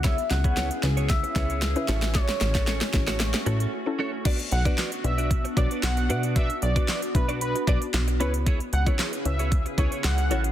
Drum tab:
CC |----------------|----------------|x---------------|----------------|
HH |xxxxxxxxxxxxxxxx|xxxxxxxxxxxx----|xxxxxxxxxxxxxxxx|xxxxxxxxxxxxxxxx|
CP |----------------|----------------|----x-------x---|----x-------x---|
SD |o-o-o-o-o-o-o-oo|oooooooooo------|----o-------o---|----o-------o---|
BD |o--o----o-o-----|o--o--o---------|o--o----o-o-----|o--o--o---o-----|

CC |----------------|
HH |xxxxxxxxxxxxxxxx|
CP |----x-------x---|
SD |----o-------o---|
BD |o--o----o-o-----|